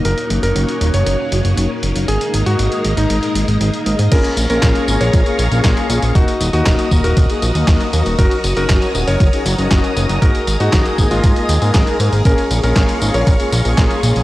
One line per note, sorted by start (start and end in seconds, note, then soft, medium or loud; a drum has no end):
0.00 4.08 A#3 medium
0.00 4.08 D#4 medium
0.05 0.14 F#1 loud
0.05 2.06 C#4 medium
0.05 2.06 F#4 medium
0.05 0.37 A#4 medium
0.05 2.06 C#5 medium
0.05 closed hi-hat medium
0.18 closed hi-hat soft
0.30 0.40 F#1 medium
0.30 closed hi-hat medium
0.43 0.53 F#1 medium
0.43 0.86 A#4 medium
0.43 closed hi-hat medium
0.56 0.65 F#1 loud
0.56 closed hi-hat medium
0.69 closed hi-hat soft
0.81 0.91 D#1 medium
0.81 closed hi-hat medium
0.94 1.03 F#1 medium
0.94 1.98 C#5 medium
0.94 closed hi-hat medium
1.06 1.16 F#1 loud
1.06 closed hi-hat medium
1.32 1.42 F#1 medium
1.32 closed hi-hat medium
1.45 1.54 F#1 medium
1.45 closed hi-hat medium
1.57 1.67 F#1 loud
1.57 closed hi-hat medium
1.83 1.93 F#1 medium
1.83 closed hi-hat medium
1.96 2.05 F#1 medium
1.96 closed hi-hat soft
2.08 2.18 G#1 loud
2.08 4.10 G#3 medium
2.08 2.40 G#4 medium
2.08 4.10 A#4 medium
2.08 4.10 D#5 medium
2.08 closed hi-hat medium
2.21 closed hi-hat soft
2.34 2.43 G#1 medium
2.34 closed hi-hat medium
2.46 2.56 G#2 medium
2.46 2.89 F#4 medium
2.46 closed hi-hat medium
2.59 2.69 G#1 loud
2.59 closed hi-hat medium
2.72 closed hi-hat soft
2.85 2.94 G#1 medium
2.85 closed hi-hat medium
2.97 3.07 G#1 medium
2.97 4.02 D#4 medium
2.97 closed hi-hat medium
3.10 3.20 G#1 loud
3.10 closed hi-hat medium
3.23 closed hi-hat soft
3.35 3.45 G#1 medium
3.35 closed hi-hat medium
3.48 3.58 G#1 medium
3.48 closed hi-hat medium
3.61 3.70 G#1 loud
3.61 closed hi-hat medium
3.74 closed hi-hat soft
3.86 3.96 G#1 medium
3.86 closed hi-hat medium
3.99 4.09 G#2 medium
3.99 closed hi-hat medium
4.12 4.21 A#1 loud
4.12 4.29 A#3 medium
4.12 4.44 C#4 medium
4.12 4.29 C#4 medium
4.12 4.29 F4 medium
4.12 4.29 G#4 loud
4.12 6.13 G#4 medium
4.12 4.44 A#4 loud
4.12 6.13 F5 medium
4.12 6.13 A#5 medium
4.12 6.13 C#6 medium
4.12 kick loud
4.12 closed hi-hat loud
4.12 crash loud
4.12 tambourine soft
4.24 closed hi-hat soft
4.24 tambourine soft
4.37 4.47 A#1 medium
4.37 closed hi-hat medium
4.37 tambourine medium
4.50 4.59 A#1 medium
4.50 4.85 A#3 medium
4.50 4.85 C#4 medium
4.50 4.93 C#4 medium
4.50 4.85 F4 medium
4.50 4.85 G#4 loud
4.50 4.93 A#4 loud
4.50 closed hi-hat soft
4.50 tambourine soft
4.62 4.72 A#1 loud
4.62 kick loud
4.62 snare loud
4.62 clap medium
4.62 closed hi-hat loud
4.62 tambourine soft
4.75 closed hi-hat soft
4.75 tambourine soft
4.88 4.98 G#1 loud
4.88 5.16 A#3 medium
4.88 5.16 C#4 medium
4.88 5.16 F4 medium
4.88 5.16 G#4 medium
4.88 tambourine medium
5.01 5.10 A#1 medium
5.01 6.05 A#4 medium
5.01 6.05 C#5 loud
5.01 closed hi-hat soft
5.01 tambourine soft
5.13 5.23 A#1 loud
5.13 kick loud
5.13 closed hi-hat loud
5.13 tambourine soft
5.26 5.36 A#3 medium
5.26 5.36 C#4 medium
5.26 5.36 F4 medium
5.26 5.36 G#4 medium
5.26 closed hi-hat soft
5.26 tambourine soft
5.39 5.48 A#1 medium
5.39 closed hi-hat medium
5.39 tambourine medium
5.52 5.61 A#1 medium
5.52 5.87 A#3 loud
5.52 5.87 C#4 medium
5.52 5.87 F4 medium
5.52 5.87 G#4 loud
5.52 closed hi-hat soft
5.52 tambourine soft
5.64 5.74 A#1 loud
5.64 kick loud
5.64 snare loud
5.64 clap medium
5.64 closed hi-hat loud
5.64 tambourine soft
5.77 closed hi-hat soft
5.77 tambourine soft
5.90 5.99 A#1 loud
5.90 6.12 A#3 medium
5.90 6.12 C#4 medium
5.90 6.12 F4 medium
5.90 6.12 G#4 medium
5.90 closed hi-hat medium
5.90 tambourine medium
6.02 6.12 A#1 medium
6.02 closed hi-hat soft
6.02 tambourine soft
6.15 6.25 D#1 loud
6.15 6.33 A#3 medium
6.15 6.47 D#4 medium
6.15 6.33 D#4 medium
6.15 6.47 F#4 medium
6.15 6.33 F#4 medium
6.15 10.18 F#4 medium
6.15 6.33 A#4 loud
6.15 8.17 D#5 medium
6.15 12.21 A#5 medium
6.15 12.21 D#6 medium
6.15 kick loud
6.15 closed hi-hat loud
6.15 tambourine soft
6.28 closed hi-hat soft
6.28 tambourine soft
6.41 6.50 D#1 loud
6.41 closed hi-hat medium
6.41 tambourine medium
6.53 6.63 D#2 medium
6.53 6.88 A#3 medium
6.53 6.88 D#4 medium
6.53 6.96 D#4 medium
6.53 6.96 F#4 loud
6.53 6.88 F#4 medium
6.53 6.88 A#4 loud
6.53 closed hi-hat soft
6.53 tambourine soft
6.66 6.76 D#1 loud
6.66 kick loud
6.66 snare loud
6.66 clap loud
6.66 closed hi-hat medium
6.66 tambourine soft
6.79 closed hi-hat soft
6.79 tambourine soft
6.91 7.01 D#1 loud
6.91 7.20 A#3 medium
6.91 7.20 D#4 medium
6.91 7.20 F#4 medium
6.91 7.20 A#4 medium
6.91 kick medium
6.91 tambourine medium
7.04 7.14 D#1 medium
7.04 8.08 F#4 medium
7.04 8.08 A#4 medium
7.04 closed hi-hat soft
7.04 tambourine soft
7.17 7.26 D#1 loud
7.17 kick loud
7.17 closed hi-hat loud
7.17 tambourine soft
7.30 7.40 A#3 medium
7.30 7.40 D#4 medium
7.30 7.40 F#4 medium
7.30 7.40 G#4 medium
7.30 closed hi-hat soft
7.30 tambourine soft
7.42 7.52 A#1 medium
7.42 closed hi-hat medium
7.42 tambourine medium
7.55 7.65 D#2 medium
7.55 7.90 A#3 loud
7.55 7.90 D#4 medium
7.55 7.90 F#4 medium
7.55 7.90 A#4 loud
7.55 closed hi-hat soft
7.55 tambourine soft
7.68 7.77 D#1 loud
7.68 kick loud
7.68 snare loud
7.68 clap medium
7.68 closed hi-hat loud
7.68 tambourine soft
7.81 closed hi-hat soft
7.81 tambourine soft
7.93 8.03 D#2 loud
7.93 8.15 A#3 medium
7.93 8.16 D#4 medium
7.93 8.16 F#4 medium
7.93 8.15 A#4 medium
7.93 closed hi-hat medium
7.93 tambourine medium
8.06 8.15 D#1 medium
8.06 closed hi-hat soft
8.06 tambourine soft
8.18 8.28 F#1 loud
8.18 8.36 C#4 medium
8.18 8.36 D#4 medium
8.18 8.36 F#4 medium
8.18 8.51 F#4 medium
8.18 8.36 A#4 loud
8.18 8.51 A#4 medium
8.18 10.20 C#5 medium
8.18 kick loud
8.18 closed hi-hat medium
8.18 tambourine soft
8.31 closed hi-hat soft
8.31 tambourine soft
8.44 8.54 F#1 loud
8.44 closed hi-hat medium
8.44 tambourine medium
8.57 8.66 F#1 medium
8.57 8.92 C#4 medium
8.57 8.92 D#4 medium
8.57 8.92 F#4 medium
8.57 9.00 F#4 medium
8.57 8.92 A#4 loud
8.57 9.00 A#4 loud
8.57 closed hi-hat soft
8.57 tambourine soft
8.69 8.79 F#1 loud
8.69 kick loud
8.69 snare loud
8.69 clap medium
8.69 closed hi-hat medium
8.69 tambourine soft
8.82 closed hi-hat soft
8.82 tambourine soft
8.95 9.04 D#1 medium
8.95 9.23 C#4 medium
8.95 9.23 D#4 medium
8.95 9.23 F#4 medium
8.95 9.23 A#4 medium
8.95 tambourine medium
9.07 9.17 F#1 medium
9.07 10.12 A#4 medium
9.07 10.12 C#5 loud
9.07 closed hi-hat soft
9.07 tambourine soft
9.20 9.30 F#1 loud
9.20 kick loud
9.20 closed hi-hat medium
9.20 tambourine soft
9.33 9.43 C#4 medium
9.33 9.43 D#4 medium
9.33 9.43 F#4 medium
9.33 9.43 G#4 medium
9.33 closed hi-hat soft
9.33 tambourine soft
9.46 9.55 F#1 loud
9.46 closed hi-hat medium
9.46 tambourine medium
9.58 9.68 F#1 medium
9.58 9.93 C#4 loud
9.58 9.93 D#4 medium
9.58 9.93 F#4 medium
9.58 9.94 A#4 loud
9.58 closed hi-hat soft
9.58 tambourine soft
9.71 9.81 F#1 loud
9.71 kick loud
9.71 snare loud
9.71 clap medium
9.71 closed hi-hat medium
9.71 tambourine soft
9.84 closed hi-hat soft
9.84 tambourine soft
9.96 10.06 F#1 loud
9.96 10.19 C#4 medium
9.96 10.19 D#4 medium
9.96 10.19 F#4 medium
9.96 10.19 A#4 medium
9.96 closed hi-hat medium
9.96 tambourine medium
10.09 10.19 F#1 medium
10.09 closed hi-hat soft
10.09 tambourine soft
10.22 10.32 G#1 loud
10.22 10.40 A#3 medium
10.22 10.40 D#4 medium
10.22 10.54 F#4 medium
10.22 10.40 G#4 medium
10.22 14.23 G#4 medium
10.22 10.54 A#4 loud
10.22 12.23 D#5 medium
10.22 kick loud
10.22 closed hi-hat medium
10.22 tambourine soft
10.35 closed hi-hat soft
10.35 tambourine soft
10.47 10.57 G#1 medium
10.47 closed hi-hat medium
10.47 tambourine medium
10.60 10.70 G#2 medium
10.60 10.95 A#3 medium
10.60 10.95 D#4 medium
10.60 11.03 D#4 medium
10.60 11.03 F#4 loud
10.60 10.95 G#4 medium
10.60 10.95 A#4 loud
10.60 closed hi-hat soft
10.60 tambourine soft
10.73 10.82 G#1 loud
10.73 kick loud
10.73 snare loud
10.73 clap medium
10.73 closed hi-hat medium
10.73 tambourine soft
10.86 closed hi-hat soft
10.86 tambourine soft
10.98 11.08 G#1 medium
10.98 11.26 A#3 medium
10.98 11.26 D#4 medium
10.98 11.26 G#4 medium
10.98 11.26 A#4 medium
10.98 kick medium
10.98 tambourine medium
11.11 11.21 G#1 medium
11.11 12.15 G#3 medium
11.11 12.15 F4 loud
11.11 closed hi-hat soft
11.11 tambourine soft
11.24 11.33 G#1 loud
11.24 kick loud
11.24 closed hi-hat medium
11.24 tambourine soft
11.36 11.46 A#3 medium
11.36 11.46 D#4 medium
11.36 11.46 G#4 medium
11.36 11.46 A#4 medium
11.36 closed hi-hat soft
11.36 tambourine soft
11.49 11.59 D#2 loud
11.49 closed hi-hat medium
11.49 tambourine medium
11.62 11.71 G#2 medium
11.62 11.97 A#3 loud
11.62 11.97 D#4 medium
11.62 11.97 G#4 medium
11.62 11.97 A#4 loud
11.62 closed hi-hat soft
11.62 tambourine soft
11.74 11.84 G#1 loud
11.74 kick loud
11.74 snare loud
11.74 clap medium
11.74 closed hi-hat medium
11.74 tambourine soft
11.87 closed hi-hat soft
11.87 tambourine soft
12.00 12.10 G#2 loud
12.00 12.22 A#3 medium
12.00 12.22 D#4 medium
12.00 12.22 G#4 medium
12.00 12.22 A#4 loud
12.00 closed hi-hat medium
12.00 tambourine medium
12.13 12.22 G#1 medium
12.13 closed hi-hat soft
12.13 tambourine soft
12.25 12.35 A#1 loud
12.25 12.43 A#3 medium
12.25 12.43 C#4 medium
12.25 12.58 C#4 medium
12.25 12.43 F4 medium
12.25 12.43 G#4 loud
12.25 12.58 A#4 loud
12.25 14.23 F5 medium
12.25 14.23 A#5 medium
12.25 14.23 C#6 medium
12.25 kick loud
12.25 closed hi-hat medium
12.25 tambourine soft
12.38 closed hi-hat soft
12.38 tambourine soft
12.51 12.60 A#1 loud
12.51 closed hi-hat medium
12.51 tambourine medium
12.63 12.73 A#1 medium
12.63 12.99 A#3 medium
12.63 12.99 C#4 medium
12.63 13.06 C#4 medium
12.63 12.99 F4 medium
12.63 12.99 G#4 loud
12.63 13.06 A#4 loud
12.63 closed hi-hat soft
12.63 tambourine soft
12.76 12.86 A#1 loud
12.76 kick loud
12.76 snare loud
12.76 clap medium
12.76 closed hi-hat medium
12.76 tambourine soft
12.89 closed hi-hat soft
12.89 tambourine soft
13.02 13.11 G#1 medium
13.02 13.30 A#3 medium
13.02 13.30 C#4 medium
13.02 13.30 F4 medium
13.02 13.30 G#4 loud
13.02 tambourine medium
13.14 13.24 A#1 medium
13.14 14.19 A#4 medium
13.14 14.19 C#5 medium
13.14 closed hi-hat soft
13.14 tambourine soft
13.27 13.37 A#1 loud
13.27 kick loud
13.27 closed hi-hat loud
13.27 tambourine soft
13.40 13.50 A#3 medium
13.40 13.50 C#4 medium
13.40 13.50 F4 medium
13.40 13.50 G#4 medium
13.40 closed hi-hat soft
13.40 tambourine soft
13.52 13.62 A#1 medium
13.52 closed hi-hat medium
13.52 tambourine medium
13.65 13.75 A#1 medium
13.65 14.00 A#3 loud
13.65 14.00 C#4 medium
13.65 14.00 F4 medium
13.65 14.00 G#4 loud
13.65 closed hi-hat soft
13.65 tambourine soft
13.78 13.87 A#1 loud
13.78 kick loud
13.78 snare loud
13.78 clap medium
13.78 closed hi-hat medium
13.78 tambourine soft
13.91 closed hi-hat soft
13.91 tambourine soft
14.03 14.13 A#1 loud
14.03 14.23 A#3 medium
14.03 14.23 C#4 medium
14.03 14.23 F4 medium
14.03 14.23 G#4 medium
14.03 closed hi-hat medium
14.03 tambourine medium
14.16 14.23 A#1 medium
14.16 closed hi-hat soft
14.16 tambourine soft